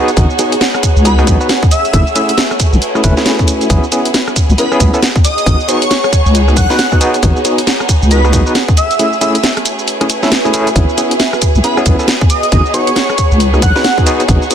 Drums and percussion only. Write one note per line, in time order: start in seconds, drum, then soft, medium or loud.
0.08 closed hi-hat soft
0.08 shaker soft
0.17 kick loud
0.17 closed hi-hat medium
0.17 shaker soft
0.30 shaker soft
0.39 closed hi-hat loud
0.39 shaker medium
0.52 closed hi-hat medium
0.52 shaker soft
0.61 snare loud
0.61 closed hi-hat medium
0.61 shaker soft
0.74 cross-stick medium
0.74 shaker soft
0.83 kick medium
0.83 closed hi-hat loud
0.83 shaker medium
0.97 shaker soft
1.05 closed hi-hat medium
1.05 shaker soft
1.19 cross-stick medium
1.19 shaker soft
1.27 kick loud
1.27 closed hi-hat loud
1.27 shaker medium
1.41 shaker soft
1.49 snare loud
1.49 closed hi-hat medium
1.49 shaker soft
1.63 kick loud
1.63 shaker soft
1.71 closed hi-hat loud
1.71 shaker medium
1.85 closed hi-hat soft
1.85 shaker soft
1.93 kick loud
1.93 closed hi-hat medium
1.93 shaker soft
2.07 shaker soft
2.16 closed hi-hat loud
2.16 shaker medium
2.29 closed hi-hat medium
2.29 shaker soft
2.38 snare loud
2.38 closed hi-hat medium
2.38 shaker soft
2.51 cross-stick medium
2.51 shaker soft
2.60 kick medium
2.60 closed hi-hat loud
2.60 shaker medium
2.73 shaker soft
2.82 closed hi-hat medium
2.82 shaker soft
2.95 cross-stick medium
2.95 shaker soft
3.04 kick loud
3.04 closed hi-hat loud
3.04 shaker medium
3.17 snare medium
3.17 shaker soft
3.26 snare loud
3.26 closed hi-hat medium
3.26 shaker soft
3.39 kick medium
3.39 shaker soft
3.48 closed hi-hat loud
3.48 shaker medium
3.61 closed hi-hat soft
3.61 shaker soft
3.70 kick loud
3.70 closed hi-hat medium
3.70 shaker soft
3.83 shaker soft
3.92 closed hi-hat loud
3.92 shaker medium
4.05 closed hi-hat medium
4.05 shaker soft
4.14 snare loud
4.14 closed hi-hat medium
4.14 shaker soft
4.28 cross-stick medium
4.28 shaker soft
4.36 kick medium
4.36 closed hi-hat loud
4.36 shaker medium
4.50 shaker soft
4.58 closed hi-hat medium
4.58 shaker soft
4.72 cross-stick medium
4.72 shaker soft
4.80 kick loud
4.80 closed hi-hat loud
4.80 shaker medium
4.94 shaker soft
5.03 snare loud
5.03 closed hi-hat medium
5.03 shaker soft
5.16 kick loud
5.16 shaker soft
5.25 closed hi-hat loud
5.25 shaker medium
5.38 closed hi-hat soft
5.38 shaker soft
5.46 kick loud
5.46 closed hi-hat medium
5.46 shaker soft
5.60 shaker soft
5.69 closed hi-hat loud
5.69 shaker medium
5.82 closed hi-hat medium
5.82 shaker soft
5.91 snare loud
5.91 closed hi-hat medium
5.91 shaker soft
6.04 cross-stick medium
6.04 shaker soft
6.12 kick medium
6.12 closed hi-hat loud
6.12 shaker medium
6.26 shaker soft
6.35 closed hi-hat medium
6.35 shaker soft
6.48 cross-stick medium
6.48 shaker soft
6.57 kick loud
6.57 closed hi-hat loud
6.57 shaker medium
6.70 snare medium
6.70 shaker soft
6.79 snare loud
6.79 closed hi-hat medium
6.79 shaker soft
6.92 kick medium
6.92 shaker soft
7.01 closed hi-hat loud
7.01 shaker medium
7.14 closed hi-hat soft
7.14 shaker soft
7.23 kick loud
7.23 closed hi-hat medium
7.23 shaker soft
7.36 shaker soft
7.45 closed hi-hat loud
7.45 shaker medium
7.58 closed hi-hat medium
7.58 shaker soft
7.67 snare loud
7.67 closed hi-hat medium
7.67 shaker soft
7.80 cross-stick medium
7.80 shaker soft
7.89 kick medium
7.89 closed hi-hat loud
7.89 shaker medium
8.02 shaker soft
8.11 closed hi-hat medium
8.11 shaker soft
8.24 cross-stick medium
8.24 shaker soft
8.33 kick medium
8.33 closed hi-hat loud
8.33 shaker medium
8.47 shaker soft
8.55 snare loud
8.55 closed hi-hat medium
8.55 shaker soft
8.68 kick loud
8.68 shaker soft
8.77 closed hi-hat loud
8.77 shaker medium
8.91 closed hi-hat soft
8.91 shaker soft
8.99 closed hi-hat medium
8.99 shaker soft
9.13 shaker soft
9.21 closed hi-hat loud
9.21 shaker medium
9.35 closed hi-hat medium
9.35 shaker soft
9.44 snare loud
9.44 closed hi-hat medium
9.44 shaker soft
9.57 cross-stick medium
9.57 closed hi-hat soft
9.57 shaker soft
9.65 closed hi-hat loud
9.65 shaker medium
9.79 shaker soft
9.88 closed hi-hat medium
9.88 shaker soft
10.01 cross-stick medium
10.01 closed hi-hat medium
10.01 shaker soft
10.10 closed hi-hat loud
10.10 shaker medium
10.23 snare medium
10.23 shaker soft
10.32 snare loud
10.32 closed hi-hat medium
10.32 shaker soft
10.45 shaker soft
10.54 closed hi-hat loud
10.54 shaker medium
10.67 closed hi-hat soft
10.67 shaker soft
10.76 kick loud
10.76 closed hi-hat medium
10.76 shaker soft
10.89 shaker soft
10.98 closed hi-hat loud
10.98 shaker medium
11.11 closed hi-hat medium
11.11 shaker soft
11.20 snare loud
11.20 closed hi-hat medium
11.20 shaker soft
11.33 cross-stick medium
11.33 shaker soft
11.42 kick medium
11.42 closed hi-hat loud
11.42 shaker medium
11.55 shaker soft
11.64 closed hi-hat medium
11.64 shaker soft
11.77 cross-stick medium
11.77 shaker soft
11.86 kick loud
11.86 closed hi-hat loud
11.86 shaker medium
11.99 shaker soft
12.08 snare loud
12.08 closed hi-hat medium
12.08 shaker soft
12.21 kick loud
12.21 shaker soft
12.30 closed hi-hat loud
12.30 shaker medium
12.43 closed hi-hat soft
12.43 shaker soft
12.52 kick loud
12.52 closed hi-hat medium
12.52 shaker soft
12.65 shaker soft
12.74 closed hi-hat loud
12.74 shaker medium
12.87 closed hi-hat medium
12.87 shaker soft
12.96 snare loud
12.96 closed hi-hat medium
12.96 shaker soft
13.10 cross-stick medium
13.10 shaker soft
13.18 kick medium
13.18 closed hi-hat loud
13.18 shaker medium
13.32 shaker soft
13.40 closed hi-hat medium
13.40 shaker soft
13.54 cross-stick medium
13.54 shaker soft
13.62 kick loud
13.62 closed hi-hat loud
13.62 shaker medium
13.76 snare medium
13.76 shaker soft
13.84 snare loud
13.84 closed hi-hat medium
13.84 shaker soft
13.98 kick medium
13.98 shaker soft
14.07 closed hi-hat loud
14.07 shaker medium
14.20 closed hi-hat soft
14.20 shaker soft
14.28 kick loud
14.28 closed hi-hat medium
14.28 shaker soft
14.42 shaker soft
14.51 closed hi-hat loud
14.51 shaker medium